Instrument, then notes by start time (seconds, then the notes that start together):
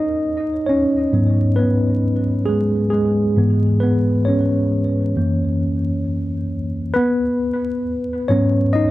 tine electric piano
Already playing: D#4 D#5
0.67 C#4 C#5
1.13 G#2 F#3 B3
1.56 B3 B4
2.45 G#3 G#4
2.90 G#3 G#4
3.37 G#2 E3 B3
3.80 B3 B4
4.25 C#4 C#5
5.16 F#2 E3 A#3
6.94 B3 B4
8.28 G#2 F#3 B3 C#4 C#5
8.73 D#4 D#5